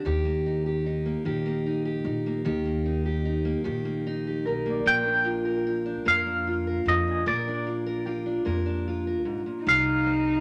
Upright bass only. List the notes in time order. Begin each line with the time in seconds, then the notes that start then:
0.06 D#2
1.25 A#1
2.04 A#1
2.46 D#2
3.65 A#1
4.46 B1
4.86 A#1
6.06 F2
6.86 F2
7.26 A#1
8.46 F2
9.26 A#1
9.67 C2